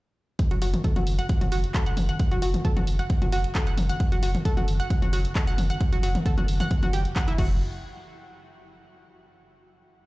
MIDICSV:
0, 0, Header, 1, 4, 480
1, 0, Start_track
1, 0, Key_signature, 3, "minor"
1, 0, Tempo, 451128
1, 417, Time_signature, 4, 2, 24, 8
1, 10707, End_track
2, 0, Start_track
2, 0, Title_t, "Synth arpeggio sound"
2, 0, Program_c, 0, 84
2, 543, Note_on_c, 0, 66, 80
2, 578, Note_off_c, 0, 66, 0
2, 657, Note_on_c, 0, 66, 80
2, 722, Note_off_c, 0, 66, 0
2, 895, Note_on_c, 0, 69, 84
2, 961, Note_off_c, 0, 69, 0
2, 1023, Note_on_c, 0, 66, 82
2, 1058, Note_off_c, 0, 66, 0
2, 1262, Note_on_c, 0, 78, 79
2, 1297, Note_off_c, 0, 78, 0
2, 1502, Note_on_c, 0, 66, 80
2, 1538, Note_off_c, 0, 66, 0
2, 1616, Note_on_c, 0, 66, 79
2, 1681, Note_off_c, 0, 66, 0
2, 1856, Note_on_c, 0, 69, 87
2, 1921, Note_off_c, 0, 69, 0
2, 1984, Note_on_c, 0, 78, 81
2, 2041, Note_off_c, 0, 78, 0
2, 2223, Note_on_c, 0, 78, 79
2, 2258, Note_off_c, 0, 78, 0
2, 2463, Note_on_c, 0, 66, 78
2, 2498, Note_off_c, 0, 66, 0
2, 2576, Note_on_c, 0, 66, 79
2, 2641, Note_off_c, 0, 66, 0
2, 2816, Note_on_c, 0, 69, 84
2, 2881, Note_off_c, 0, 69, 0
2, 2942, Note_on_c, 0, 66, 78
2, 2978, Note_off_c, 0, 66, 0
2, 3184, Note_on_c, 0, 78, 78
2, 3218, Note_off_c, 0, 78, 0
2, 3424, Note_on_c, 0, 66, 77
2, 3459, Note_off_c, 0, 66, 0
2, 3538, Note_on_c, 0, 66, 78
2, 3602, Note_off_c, 0, 66, 0
2, 3778, Note_on_c, 0, 69, 85
2, 3842, Note_off_c, 0, 69, 0
2, 3904, Note_on_c, 0, 78, 80
2, 3962, Note_off_c, 0, 78, 0
2, 4144, Note_on_c, 0, 78, 80
2, 4178, Note_off_c, 0, 78, 0
2, 4384, Note_on_c, 0, 66, 80
2, 4419, Note_off_c, 0, 66, 0
2, 4497, Note_on_c, 0, 66, 83
2, 4562, Note_off_c, 0, 66, 0
2, 4737, Note_on_c, 0, 69, 83
2, 4802, Note_off_c, 0, 69, 0
2, 4863, Note_on_c, 0, 66, 78
2, 4898, Note_off_c, 0, 66, 0
2, 5104, Note_on_c, 0, 78, 76
2, 5138, Note_off_c, 0, 78, 0
2, 5343, Note_on_c, 0, 66, 79
2, 5378, Note_off_c, 0, 66, 0
2, 5457, Note_on_c, 0, 66, 81
2, 5522, Note_off_c, 0, 66, 0
2, 5698, Note_on_c, 0, 69, 84
2, 5762, Note_off_c, 0, 69, 0
2, 5824, Note_on_c, 0, 78, 78
2, 5882, Note_off_c, 0, 78, 0
2, 6065, Note_on_c, 0, 78, 80
2, 6099, Note_off_c, 0, 78, 0
2, 6304, Note_on_c, 0, 66, 80
2, 6339, Note_off_c, 0, 66, 0
2, 6417, Note_on_c, 0, 66, 81
2, 6482, Note_off_c, 0, 66, 0
2, 6657, Note_on_c, 0, 69, 85
2, 6722, Note_off_c, 0, 69, 0
2, 6784, Note_on_c, 0, 66, 76
2, 6819, Note_off_c, 0, 66, 0
2, 7024, Note_on_c, 0, 78, 81
2, 7059, Note_off_c, 0, 78, 0
2, 7264, Note_on_c, 0, 66, 81
2, 7299, Note_off_c, 0, 66, 0
2, 7378, Note_on_c, 0, 67, 78
2, 7416, Note_off_c, 0, 67, 0
2, 7617, Note_on_c, 0, 78, 104
2, 7714, Note_off_c, 0, 78, 0
2, 7743, Note_on_c, 0, 64, 105
2, 7801, Note_off_c, 0, 64, 0
2, 7858, Note_on_c, 0, 66, 89
2, 8080, Note_off_c, 0, 66, 0
2, 10707, End_track
3, 0, Start_track
3, 0, Title_t, "Sub bass"
3, 0, Program_c, 1, 38
3, 543, Note_on_c, 1, 30, 79
3, 650, Note_off_c, 1, 30, 0
3, 656, Note_on_c, 1, 30, 99
3, 781, Note_off_c, 1, 30, 0
3, 1023, Note_on_c, 1, 30, 78
3, 1130, Note_off_c, 1, 30, 0
3, 1136, Note_on_c, 1, 30, 99
3, 1261, Note_off_c, 1, 30, 0
3, 1503, Note_on_c, 1, 30, 78
3, 1610, Note_off_c, 1, 30, 0
3, 1617, Note_on_c, 1, 30, 97
3, 1741, Note_off_c, 1, 30, 0
3, 1984, Note_on_c, 1, 30, 80
3, 2091, Note_off_c, 1, 30, 0
3, 2097, Note_on_c, 1, 30, 100
3, 2221, Note_off_c, 1, 30, 0
3, 2464, Note_on_c, 1, 30, 78
3, 2571, Note_off_c, 1, 30, 0
3, 2577, Note_on_c, 1, 30, 100
3, 2701, Note_off_c, 1, 30, 0
3, 2944, Note_on_c, 1, 30, 82
3, 3051, Note_off_c, 1, 30, 0
3, 3057, Note_on_c, 1, 30, 100
3, 3181, Note_off_c, 1, 30, 0
3, 3423, Note_on_c, 1, 30, 75
3, 3530, Note_off_c, 1, 30, 0
3, 3536, Note_on_c, 1, 30, 101
3, 3661, Note_off_c, 1, 30, 0
3, 3903, Note_on_c, 1, 30, 83
3, 4010, Note_off_c, 1, 30, 0
3, 4017, Note_on_c, 1, 30, 103
3, 4141, Note_off_c, 1, 30, 0
3, 4383, Note_on_c, 1, 30, 77
3, 4490, Note_off_c, 1, 30, 0
3, 4496, Note_on_c, 1, 30, 101
3, 4621, Note_off_c, 1, 30, 0
3, 4864, Note_on_c, 1, 30, 83
3, 4970, Note_off_c, 1, 30, 0
3, 4976, Note_on_c, 1, 30, 100
3, 5100, Note_off_c, 1, 30, 0
3, 5343, Note_on_c, 1, 30, 77
3, 5450, Note_off_c, 1, 30, 0
3, 5457, Note_on_c, 1, 30, 100
3, 5581, Note_off_c, 1, 30, 0
3, 5823, Note_on_c, 1, 30, 79
3, 5930, Note_off_c, 1, 30, 0
3, 5936, Note_on_c, 1, 30, 100
3, 6061, Note_off_c, 1, 30, 0
3, 6303, Note_on_c, 1, 30, 80
3, 6409, Note_off_c, 1, 30, 0
3, 6416, Note_on_c, 1, 30, 97
3, 6540, Note_off_c, 1, 30, 0
3, 6784, Note_on_c, 1, 30, 81
3, 6890, Note_off_c, 1, 30, 0
3, 6897, Note_on_c, 1, 30, 97
3, 7021, Note_off_c, 1, 30, 0
3, 7263, Note_on_c, 1, 30, 80
3, 7370, Note_off_c, 1, 30, 0
3, 7377, Note_on_c, 1, 30, 104
3, 7501, Note_off_c, 1, 30, 0
3, 7744, Note_on_c, 1, 30, 81
3, 7851, Note_off_c, 1, 30, 0
3, 7858, Note_on_c, 1, 30, 95
3, 8080, Note_off_c, 1, 30, 0
3, 10707, End_track
4, 0, Start_track
4, 0, Title_t, "Drums"
4, 416, Note_on_c, 9, 36, 119
4, 416, Note_on_c, 9, 42, 82
4, 522, Note_off_c, 9, 42, 0
4, 523, Note_off_c, 9, 36, 0
4, 543, Note_on_c, 9, 42, 55
4, 650, Note_off_c, 9, 42, 0
4, 656, Note_on_c, 9, 46, 108
4, 763, Note_off_c, 9, 46, 0
4, 784, Note_on_c, 9, 42, 56
4, 784, Note_on_c, 9, 47, 81
4, 890, Note_off_c, 9, 42, 0
4, 890, Note_off_c, 9, 47, 0
4, 896, Note_on_c, 9, 36, 121
4, 896, Note_on_c, 9, 42, 84
4, 1003, Note_off_c, 9, 36, 0
4, 1003, Note_off_c, 9, 42, 0
4, 1023, Note_on_c, 9, 42, 58
4, 1023, Note_on_c, 9, 47, 92
4, 1129, Note_off_c, 9, 42, 0
4, 1129, Note_off_c, 9, 47, 0
4, 1136, Note_on_c, 9, 46, 106
4, 1242, Note_off_c, 9, 46, 0
4, 1263, Note_on_c, 9, 42, 58
4, 1369, Note_off_c, 9, 42, 0
4, 1376, Note_on_c, 9, 36, 123
4, 1376, Note_on_c, 9, 42, 84
4, 1482, Note_off_c, 9, 36, 0
4, 1482, Note_off_c, 9, 42, 0
4, 1504, Note_on_c, 9, 42, 57
4, 1504, Note_on_c, 9, 47, 78
4, 1610, Note_off_c, 9, 42, 0
4, 1610, Note_off_c, 9, 47, 0
4, 1616, Note_on_c, 9, 46, 100
4, 1722, Note_off_c, 9, 46, 0
4, 1743, Note_on_c, 9, 42, 55
4, 1850, Note_off_c, 9, 42, 0
4, 1856, Note_on_c, 9, 36, 122
4, 1856, Note_on_c, 9, 39, 124
4, 1856, Note_on_c, 9, 42, 85
4, 1962, Note_off_c, 9, 39, 0
4, 1962, Note_off_c, 9, 42, 0
4, 1963, Note_off_c, 9, 36, 0
4, 1983, Note_on_c, 9, 42, 56
4, 2089, Note_off_c, 9, 42, 0
4, 2095, Note_on_c, 9, 46, 108
4, 2095, Note_on_c, 9, 47, 92
4, 2202, Note_off_c, 9, 46, 0
4, 2202, Note_off_c, 9, 47, 0
4, 2222, Note_on_c, 9, 42, 55
4, 2329, Note_off_c, 9, 42, 0
4, 2335, Note_on_c, 9, 42, 84
4, 2336, Note_on_c, 9, 36, 127
4, 2442, Note_off_c, 9, 42, 0
4, 2443, Note_off_c, 9, 36, 0
4, 2463, Note_on_c, 9, 42, 54
4, 2569, Note_off_c, 9, 42, 0
4, 2576, Note_on_c, 9, 46, 113
4, 2683, Note_off_c, 9, 46, 0
4, 2704, Note_on_c, 9, 42, 55
4, 2704, Note_on_c, 9, 47, 77
4, 2810, Note_off_c, 9, 42, 0
4, 2810, Note_off_c, 9, 47, 0
4, 2817, Note_on_c, 9, 36, 124
4, 2817, Note_on_c, 9, 42, 84
4, 2923, Note_off_c, 9, 36, 0
4, 2923, Note_off_c, 9, 42, 0
4, 2943, Note_on_c, 9, 42, 59
4, 2943, Note_on_c, 9, 47, 92
4, 3050, Note_off_c, 9, 42, 0
4, 3050, Note_off_c, 9, 47, 0
4, 3056, Note_on_c, 9, 46, 113
4, 3163, Note_off_c, 9, 46, 0
4, 3183, Note_on_c, 9, 42, 56
4, 3290, Note_off_c, 9, 42, 0
4, 3297, Note_on_c, 9, 36, 127
4, 3297, Note_on_c, 9, 42, 84
4, 3403, Note_off_c, 9, 36, 0
4, 3403, Note_off_c, 9, 42, 0
4, 3423, Note_on_c, 9, 42, 55
4, 3423, Note_on_c, 9, 47, 79
4, 3530, Note_off_c, 9, 42, 0
4, 3530, Note_off_c, 9, 47, 0
4, 3537, Note_on_c, 9, 46, 108
4, 3643, Note_off_c, 9, 46, 0
4, 3663, Note_on_c, 9, 42, 56
4, 3770, Note_off_c, 9, 42, 0
4, 3777, Note_on_c, 9, 36, 123
4, 3777, Note_on_c, 9, 39, 122
4, 3777, Note_on_c, 9, 42, 88
4, 3883, Note_off_c, 9, 36, 0
4, 3883, Note_off_c, 9, 39, 0
4, 3883, Note_off_c, 9, 42, 0
4, 3903, Note_on_c, 9, 42, 55
4, 4010, Note_off_c, 9, 42, 0
4, 4017, Note_on_c, 9, 46, 115
4, 4017, Note_on_c, 9, 47, 87
4, 4123, Note_off_c, 9, 46, 0
4, 4123, Note_off_c, 9, 47, 0
4, 4144, Note_on_c, 9, 42, 54
4, 4250, Note_off_c, 9, 42, 0
4, 4257, Note_on_c, 9, 36, 125
4, 4257, Note_on_c, 9, 42, 82
4, 4363, Note_off_c, 9, 36, 0
4, 4363, Note_off_c, 9, 42, 0
4, 4384, Note_on_c, 9, 42, 57
4, 4490, Note_off_c, 9, 42, 0
4, 4497, Note_on_c, 9, 46, 112
4, 4604, Note_off_c, 9, 46, 0
4, 4625, Note_on_c, 9, 42, 54
4, 4625, Note_on_c, 9, 47, 79
4, 4732, Note_off_c, 9, 42, 0
4, 4732, Note_off_c, 9, 47, 0
4, 4737, Note_on_c, 9, 36, 127
4, 4738, Note_on_c, 9, 42, 83
4, 4844, Note_off_c, 9, 36, 0
4, 4844, Note_off_c, 9, 42, 0
4, 4865, Note_on_c, 9, 42, 57
4, 4865, Note_on_c, 9, 47, 92
4, 4972, Note_off_c, 9, 42, 0
4, 4972, Note_off_c, 9, 47, 0
4, 4978, Note_on_c, 9, 46, 112
4, 5085, Note_off_c, 9, 46, 0
4, 5105, Note_on_c, 9, 42, 56
4, 5211, Note_off_c, 9, 42, 0
4, 5217, Note_on_c, 9, 36, 127
4, 5218, Note_on_c, 9, 42, 83
4, 5324, Note_off_c, 9, 36, 0
4, 5324, Note_off_c, 9, 42, 0
4, 5345, Note_on_c, 9, 42, 55
4, 5345, Note_on_c, 9, 47, 84
4, 5451, Note_off_c, 9, 42, 0
4, 5451, Note_off_c, 9, 47, 0
4, 5457, Note_on_c, 9, 46, 114
4, 5564, Note_off_c, 9, 46, 0
4, 5585, Note_on_c, 9, 42, 55
4, 5691, Note_off_c, 9, 42, 0
4, 5697, Note_on_c, 9, 36, 126
4, 5698, Note_on_c, 9, 39, 119
4, 5698, Note_on_c, 9, 42, 84
4, 5804, Note_off_c, 9, 36, 0
4, 5804, Note_off_c, 9, 39, 0
4, 5804, Note_off_c, 9, 42, 0
4, 5825, Note_on_c, 9, 42, 55
4, 5931, Note_off_c, 9, 42, 0
4, 5938, Note_on_c, 9, 46, 113
4, 5938, Note_on_c, 9, 47, 90
4, 6044, Note_off_c, 9, 46, 0
4, 6044, Note_off_c, 9, 47, 0
4, 6065, Note_on_c, 9, 42, 55
4, 6171, Note_off_c, 9, 42, 0
4, 6177, Note_on_c, 9, 36, 125
4, 6177, Note_on_c, 9, 42, 81
4, 6284, Note_off_c, 9, 36, 0
4, 6284, Note_off_c, 9, 42, 0
4, 6305, Note_on_c, 9, 42, 55
4, 6411, Note_off_c, 9, 42, 0
4, 6418, Note_on_c, 9, 46, 111
4, 6524, Note_off_c, 9, 46, 0
4, 6544, Note_on_c, 9, 42, 52
4, 6544, Note_on_c, 9, 47, 86
4, 6651, Note_off_c, 9, 42, 0
4, 6651, Note_off_c, 9, 47, 0
4, 6657, Note_on_c, 9, 36, 127
4, 6657, Note_on_c, 9, 42, 79
4, 6763, Note_off_c, 9, 36, 0
4, 6764, Note_off_c, 9, 42, 0
4, 6784, Note_on_c, 9, 42, 56
4, 6784, Note_on_c, 9, 47, 97
4, 6891, Note_off_c, 9, 42, 0
4, 6891, Note_off_c, 9, 47, 0
4, 6897, Note_on_c, 9, 46, 109
4, 7004, Note_off_c, 9, 46, 0
4, 7024, Note_on_c, 9, 42, 53
4, 7024, Note_on_c, 9, 47, 84
4, 7130, Note_off_c, 9, 42, 0
4, 7130, Note_off_c, 9, 47, 0
4, 7137, Note_on_c, 9, 36, 127
4, 7137, Note_on_c, 9, 42, 84
4, 7243, Note_off_c, 9, 36, 0
4, 7243, Note_off_c, 9, 42, 0
4, 7264, Note_on_c, 9, 42, 54
4, 7264, Note_on_c, 9, 47, 87
4, 7370, Note_off_c, 9, 42, 0
4, 7370, Note_off_c, 9, 47, 0
4, 7376, Note_on_c, 9, 46, 109
4, 7483, Note_off_c, 9, 46, 0
4, 7503, Note_on_c, 9, 42, 55
4, 7609, Note_off_c, 9, 42, 0
4, 7617, Note_on_c, 9, 36, 127
4, 7617, Note_on_c, 9, 39, 118
4, 7617, Note_on_c, 9, 42, 79
4, 7723, Note_off_c, 9, 39, 0
4, 7723, Note_off_c, 9, 42, 0
4, 7724, Note_off_c, 9, 36, 0
4, 7744, Note_on_c, 9, 42, 53
4, 7850, Note_off_c, 9, 42, 0
4, 7857, Note_on_c, 9, 36, 117
4, 7857, Note_on_c, 9, 49, 91
4, 7963, Note_off_c, 9, 49, 0
4, 7964, Note_off_c, 9, 36, 0
4, 10707, End_track
0, 0, End_of_file